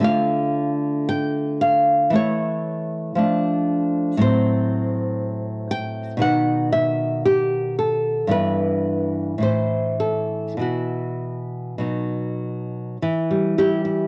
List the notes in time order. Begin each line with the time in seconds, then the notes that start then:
0.00 D3 A3 F4
0.04 F5
1.09 G5
1.61 F5
2.10 E3 A3 E4
2.16 C#5
3.15 F3 A3 D4
4.17 A2 F#3 C4
4.21 C5
5.71 G5
6.17 B2 D#3 B3
6.22 F#5
6.73 E5
7.25 G4
7.79 A4
8.27 G2 E3 B3
8.31 B4
9.38 A2 E3
9.42 E4 C5
10.00 A4
10.57 B2 E3 E4
10.61 F#4
11.78 B2 F#3 D#4
13.02 E3
13.31 G3
13.58 G3 E4 G4
13.85 E4